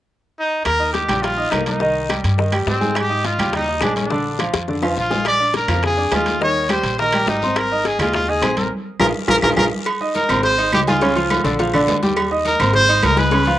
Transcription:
0.39 D#4
0.65 D#2 A#4, high bongo, high conga, high timbale, long guiro, claves
0.80 D#4 D#5 D#6, high conga
0.93 G4, high bongo, high conga, high timbale, low timbale, short guiro
1.08 A#1 G3 G4 G5, high conga, low conga, high timbale, short guiro, claves
1.22 F4, high bongo, high conga, high timbale, long guiro
1.37 D#4 D#5 D#6, high conga
1.51 C2 A#3 D#4 A#4 A#5, high bongo, low bongo, high conga, high timbale, low timbale, short guiro, claves
1.66 D#4, high conga, high timbale, short guiro
1.80 D#3 D#4 D#5, high bongo, high conga, long guiro
1.96 high conga
2.09 G3 G4 G5, high bongo, high conga, high timbale, low timbale, short guiro, claves
2.24 G2, high bongo, high conga, high timbale, short guiro
2.38 D#3 D#4 D#5, high bongo, high conga, long guiro
2.52 G3 G4 G5, high bongo, high conga, high timbale, claves
2.67 G#2 C4, high bongo, low bongo, low timbale, short guiro
2.81 G#3 G#4 G#5, high bongo, high conga, short guiro
2.95 G4, high bongo, high conga, high timbale, long guiro, claves
3.10 D#4 D#5 D#6, high conga
3.24 F4, high bongo, high conga, high timbale, low timbale, short guiro
3.39 D#2 G3 G4 G5, high conga, low conga, high timbale, short guiro, claves
3.53 D#4, high bongo, high conga, low conga, high timbale, long guiro
3.68 D#4 D#5 D#6, high conga
3.81 A#1 G#3 D4 G#4 G#5, high bongo, low bongo, high conga, high timbale, low timbale, short guiro, claves
3.96 D4, high conga, high timbale, short guiro
4.10 D3 D4 D5, high bongo, high conga, long guiro
4.25 high conga
4.39 F3 F4 F5, high bongo, high conga, high timbale, low timbale, short guiro, claves
4.54 F2, high bongo, high conga, high timbale, short guiro
4.68 D3 D4 D5, high bongo, high conga, long guiro
4.82 F3 F4 F5, low bongo, high timbale, claves
4.97 A#1 F4, low bongo, high conga, short guiro
5.10 G#3 G#4 G#5, low bongo, high conga, low timbale, short guiro
5.25 D5, high bongo, high conga, high timbale, long guiro, claves
5.40 D4 D5 D6, high conga
5.54 A#4, high bongo, high conga, high timbale, low timbale, short guiro
5.68 F2 F3 F4 F5, high conga, low conga, high timbale, short guiro, claves
5.83 G#4, high bongo, high conga, low conga, high timbale, long guiro
5.98 D4 D5 D6, high conga
6.12 D#2 G#3 F4 G#4 G#5, high bongo, low bongo, high conga, high timbale, low timbale, short guiro, claves
6.26 high conga, high timbale, short guiro
6.41 D#3 D#4 C#5 D#5, high bongo, high conga, long guiro
6.56 high conga
6.69 G3 G4 C5 G5, high bongo, high conga, high timbale, low timbale, short guiro, claves
6.83 A#1, high bongo, high conga, high timbale, short guiro
6.98 D#3 D#4 A#4 D#5, high bongo, high conga, long guiro
7.13 G3 G4 G5, high bongo, high conga, high timbale, claves
7.27 G#1 D#4, high bongo, low bongo, high conga, low timbale, short guiro
7.42 C4 C5 C6, high bongo, high conga, short guiro
7.56 A#4, high bongo, high conga, high timbale, long guiro, claves
7.72 D#4 D#5 D#6, high conga
7.85 G#4, high bongo, high conga, high timbale, low timbale, short guiro
7.99 D#2 G#3 F4 G#4 G#5, high conga, low conga, high timbale, short guiro, claves
8.13 F4, high bongo, high conga, low conga, high timbale, long guiro
8.28 D#4 G#4 D#5 D#6, high conga
8.42 A#1 C4 C5 C6, high bongo, low bongo, high conga, high timbale, low timbale, short guiro, claves
8.57 A#4, high conga, high timbale, short guiro
8.99 A#1 F4 G#4 A#4, low bongo, high conga, high timbale, long guiro, claves
9.28 A#1 F4 G#4 A#4, low bongo, high conga, high timbale, long guiro, claves
9.42 A#1 F4 G#4 A#4, low bongo, high conga, high timbale, long guiro, claves
9.57 A#1 F4 G#4 A#4, low bongo, high conga, high timbale, long guiro, claves
9.86 cowbell, high conga, low agogo, long guiro, claves
10.01 D#4 D#5 D#6, high conga
10.15 A#4, cowbell, high conga, low timbale, low agogo, short guiro
10.29 G#1 C4 C5 C6, cowbell, high conga, low conga, low agogo, short guiro, claves
10.43 C5, cowbell, high conga, long guiro
10.58 D#4 D#5 D#6, high conga, low agogo
10.73 C#2 G4, cowbell, high conga, low timbale, low agogo, short guiro, claves
10.87 G#3 F4 G#4 G#5, cowbell, high conga, short guiro
11.01 C#3 C#4 C#5, cowbell, high conga, low agogo, long guiro
11.16 F3 F4 F5, high conga, low agogo
11.30 cowbell, high conga, low timbale, low agogo, short guiro, claves
11.44 A#1 D3 D4 D5, cowbell, short guiro
11.59 F3 F4 F5, cowbell, high conga, low agogo, long guiro
11.74 D3 D4 D5, high conga, low agogo, claves
11.87 D#2, cowbell, high conga, low timbale, low agogo, short guiro
12.03 G3 G4 G5, cowbell, high conga, short guiro
12.16 cowbell, high conga, low agogo, long guiro, claves
12.31 D#4 D#5 D#6, high conga
12.45 A#4, cowbell, high conga, low timbale, low agogo, short guiro
12.60 G#1 C4 C5 C6, cowbell, high conga, low conga, low agogo, short guiro, claves
12.73 C5, cowbell, high conga, low conga, long guiro
12.89 D#4 D#5 D#6, high conga, low agogo
13.03 C#2 A#4, cowbell, high conga, low timbale, low agogo, short guiro, claves
13.17 G#3 G#4 B4 G#5, cowbell, high conga, short guiro
13.31 C#3 C#4 C#5, cowbell, high conga, low agogo, long guiro
13.46 F3 F4 F5, high conga, low agogo

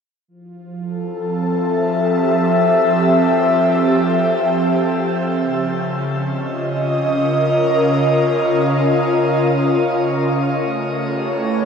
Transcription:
0.28 F3
0.81 A4
1.01 C4
1.51 E5
1.76 G4
5.41 C#3
6.00 C#4
6.22 F4
6.27 D#5
7.06 A#4
10.58 A3
10.90 C#5
11.02 G4
11.24 E4 B4

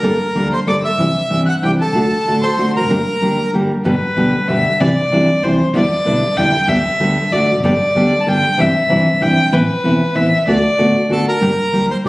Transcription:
Already playing: A#4 A#5
0.02 G1 D3 G3 A#3 D4 A4
0.35 D2 D3 G3 A#3 D4 A4
0.52 C5 C6
0.66 G1 D3 G3 A#3 D4 A4 D5 D6
0.83 E5 E6
0.98 C2 C3 E3 G3 D4 E4
1.30 G1 C3 E3 G3 D4 E4
1.46 F#5 F#6
1.62 C2 C3 E3 G3 D4 E4 G4 G5
1.79 A4 A5
1.93 D2 D3 A3 D4 F#4
2.25 A1 D3 A3 D4 F#4
2.41 C5 C6
2.57 D2 D3 A3 D4 F#4
2.74 E1 A#4 A#5
2.81 F1 F#1
2.89 G1 D3 G3 A#3 D4 G4
3.21 D2 D3 G3 A#3 D4 G4
3.53 G1 D3 G3 A#3 D4 G4
3.84 G1 B2 D3 G3 B3 G4 B4
4.16 D2 B2 D3 G3 B3 G4
4.48 G1 B2 D3 G3 B3 G4 E5
4.80 C2 C3 E3 G3 D4 E4 D5
5.11 G1 C3 E3 G3 D4 E4
5.42 C2 C3 E3 G3 D4 E4 C5
5.74 E2 B2 D3 G3 B3 E4 D5
6.05 B1 B2 D3 G3 B3 E4
6.36 E2 B2 D3 G3 B3 E4 G5
6.68 D2 D3 G3 B3 G4 E5
6.99 D2 D3 G3 B3 G4
7.31 D2 D3 A3 D4 F#4 D5
7.51 E1
7.56 F1
7.60 F#1 G1 D3 G3 D5
7.64 B3 G4
7.95 D2 D3 G3 B3 G4
8.20 A5
8.26 G1 D3 G3 B3 G4 G5
8.57 G1 C3 E3 G3 D4 E4 E5
8.89 G1 C3 E3 G3 D4 E4
9.21 G1 C3 E3 G3 D4 E4 G5
9.52 A1 E3 B3 C4 E4 B4
9.83 E1 E3 B3 C4 E4
10.15 A1 E3 B3 C4 E4 E5
10.47 D2 D3 A3 B3 F#4 D5
10.78 A1 D3 A3 B3 F#4
11.09 D2 D3 A3 B3 F#4 A4
11.29 A#4
11.41 G1 D3 G3 A#3 D4 G4
11.72 D2 D3 G3 A#3 D4 G4
11.91 C5
12.04 G1 D3 G3 A#3 D4 G4

